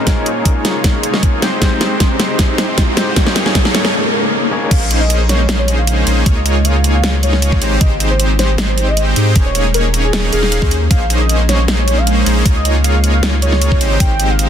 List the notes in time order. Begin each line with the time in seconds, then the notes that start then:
Already playing: D#4, riser
0.05 G#3 A#3 C#4 D#4 F4 G#4 A#4 C#5, kick, snare, closed hi-hat
0.26 closed hi-hat
0.45 kick, closed hi-hat
0.65 snare, closed hi-hat
0.84 kick, snare, closed hi-hat
1.03 closed hi-hat
1.14 snare
1.23 kick, closed hi-hat
1.41 G#2 G#3 C4 D#4 G4 C5, snare, closed hi-hat
1.60 G#3 C4 D#4 G4 C5, kick, snare, closed hi-hat
1.64 C5
1.81 snare, closed hi-hat
2.00 kick, snare, closed hi-hat
2.20 snare, closed hi-hat
2.39 kick, snare, closed hi-hat
2.58 snare, closed hi-hat
2.78 kick, snare, closed hi-hat
2.96 G#3 C4 D#4 G4 C5, snare, closed hi-hat
3.14 A#3 C#4 D#4 G#4 C#5, kick, snare, closed hi-hat
3.27 snare
3.36 snare, closed hi-hat
3.46 snare
3.55 kick, snare, closed hi-hat
3.65 snare
3.75 snare, closed hi-hat
3.85 snare
3.94 swell
4.51 A#3 C#4 D#4 G#4 C#5
4.71 A#1 C#3 G#3 A#3 C#4 D#4 G#4 C5 F5, kick, closed hi-hat, crash
4.91 closed hi-hat
5.01 D#5
5.10 closed hi-hat
5.29 C#5, snare, closed hi-hat
5.49 snare, closed hi-hat
5.59 C#5
5.68 closed hi-hat
5.78 F5
5.87 closed hi-hat
6.07 A#1 A#3 C#4 D#4 G#4 C5, closed hi-hat
6.26 C#2 A#3 D#4 F4 G#4 C#5, kick, closed hi-hat
6.36 D#5
6.46 closed hi-hat
6.65 F5, closed hi-hat
6.84 closed hi-hat
6.94 F5
7.04 snare, closed hi-hat
7.23 C#5, closed hi-hat
7.33 snare
7.42 closed hi-hat
7.52 kick
7.62 G#1 G#3 C4 D#4 G4 C5, closed hi-hat
7.81 G#1 G#3 C4 D#4 G4 C5 D#5, kick, closed hi-hat
8.00 closed hi-hat
8.10 C5
8.20 closed hi-hat
8.39 C5, snare, closed hi-hat
8.58 snare, closed hi-hat
8.69 C5
8.78 closed hi-hat
8.88 D#5
8.97 closed hi-hat
9.16 G#2 G#3 C4 D#4 G4 C5, closed hi-hat
9.36 D#1 D#3 A#3 C#4 D#4 G#4 C#5, kick, closed hi-hat
9.46 C#5
9.55 closed hi-hat
9.74 A#4, closed hi-hat
9.94 closed hi-hat
10.04 G#4
10.13 snare, closed hi-hat
10.33 D#1 A#3 C#4 D#4 G#4 F5, closed hi-hat
10.43 snare
10.52 closed hi-hat
10.62 D#2 A#3 C#4 D#4 G#4 C5, kick
10.71 closed hi-hat
10.91 A#1 G#3 A#3 C#4 D#4 G#4 C5 F5, kick, closed hi-hat
11.10 closed hi-hat
11.20 D#5
11.29 closed hi-hat
11.49 C#5, snare, closed hi-hat
11.68 snare, closed hi-hat
11.78 C#5
11.88 closed hi-hat
11.98 F5
12.07 closed hi-hat
12.26 A#1 A#3 C#4 D#4 G#4 C5, closed hi-hat
12.45 C#2 A#3 D#4 F4 G#4 C#5, kick, closed hi-hat
12.56 D#5
12.65 closed hi-hat
12.84 F5, closed hi-hat
13.04 closed hi-hat
13.14 F5
13.23 snare, closed hi-hat
13.42 C#5, closed hi-hat
13.52 snare
13.62 closed hi-hat
13.72 kick
13.81 G#1 G#3 C4 D#4 G4 C5, closed hi-hat
14.00 G#1 G#3 C4 D#4 G4 C5 G5, kick, closed hi-hat
14.20 closed hi-hat
14.30 F5
14.39 closed hi-hat